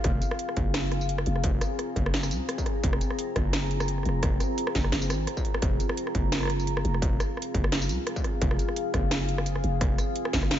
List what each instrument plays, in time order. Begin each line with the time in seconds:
Already playing: ambient pad C4 F4 G#4 F5
0.04 808-style bass F1, kick, cross-stick, closed hi-hat
0.22 closed hi-hat, tambourine
0.31 cross-stick
0.39 closed hi-hat
0.49 cross-stick
0.57 808-style bass F#1, kick, closed hi-hat
0.69 ambient pad A#5
0.74 cross-stick, snare, closed hi-hat, tambourine
0.92 cross-stick, closed hi-hat
1.01 tambourine
1.09 closed hi-hat
1.18 cross-stick
1.26 808-style bass F1, closed hi-hat
1.36 cross-stick
1.44 808-style bass F1, kick, closed hi-hat
1.61 cross-stick, closed hi-hat, tambourine
1.79 cross-stick, closed hi-hat
1.96 808-style bass F#1, kick, closed hi-hat
2.06 cross-stick
2.14 snare, closed hi-hat
2.23 cross-stick, tambourine
2.31 808-style bass C2, closed hi-hat, tambourine
2.49 cross-stick, closed hi-hat
2.58 kick, tambourine
2.66 cross-stick, closed hi-hat
2.83 808-style bass F1, kick, closed hi-hat
2.93 cross-stick
3.01 closed hi-hat, tambourine
3.10 cross-stick
3.19 closed hi-hat
3.36 808-style bass F#1, kick, cross-stick, closed hi-hat
3.53 cross-stick, snare, closed hi-hat, tambourine
3.71 closed hi-hat
3.80 cross-stick, tambourine
3.88 closed hi-hat
3.98 cross-stick
4.03 808-style bass F1, cross-stick, closed hi-hat
4.09 cross-stick
4.23 808-style bass F1, kick, cross-stick, closed hi-hat
4.40 cross-stick, closed hi-hat, tambourine
4.58 closed hi-hat
4.67 cross-stick
4.75 808-style bass F#1, kick, snare, closed hi-hat
4.84 cross-stick
4.92 808-style bass F#1, snare, closed hi-hat
5.02 tambourine
5.10 808-style bass G#1, cross-stick, closed hi-hat, tambourine
5.27 cross-stick, closed hi-hat
5.37 kick, tambourine
5.45 closed hi-hat
5.54 cross-stick
5.62 808-style bass F1, kick, cross-stick, closed hi-hat
5.80 closed hi-hat, tambourine
5.89 cross-stick
5.97 closed hi-hat
6.07 cross-stick
6.15 808-style bass F#1, kick, closed hi-hat
6.27 ambient pad F5
6.32 cross-stick, snare, closed hi-hat, tambourine
6.35 cross-stick
6.38 cross-stick
6.40 cross-stick
6.43 cross-stick
6.45 cross-stick
6.47 cross-stick
6.50 cross-stick, closed hi-hat
6.60 tambourine
6.67 closed hi-hat
6.77 cross-stick
6.85 808-style bass F1, closed hi-hat
6.94 cross-stick
7.02 808-style bass F1, kick, closed hi-hat
7.20 cross-stick, closed hi-hat, tambourine
7.37 cross-stick
7.42 closed hi-hat
7.54 808-style bass F#1, kick, closed hi-hat
7.64 cross-stick
7.72 snare, closed hi-hat
7.82 tambourine
7.89 808-style bass C2, closed hi-hat, tambourine
8.07 cross-stick, closed hi-hat
8.16 kick, tambourine
8.24 cross-stick, closed hi-hat
8.42 808-style bass F1, kick, closed hi-hat
8.51 cross-stick
8.59 closed hi-hat, tambourine
8.69 cross-stick
8.76 closed hi-hat
8.94 808-style bass F#1, kick, cross-stick, closed hi-hat
9.11 cross-stick, snare, closed hi-hat, tambourine
9.29 closed hi-hat
9.38 cross-stick
9.46 closed hi-hat, tambourine
9.56 cross-stick
9.64 808-style bass F1, closed hi-hat
9.81 808-style bass F1, kick, cross-stick, closed hi-hat
9.98 cross-stick, closed hi-hat, tambourine
10.16 closed hi-hat
10.25 cross-stick
10.33 808-style bass F#1, kick, snare, closed hi-hat
10.43 cross-stick
10.51 snare, closed hi-hat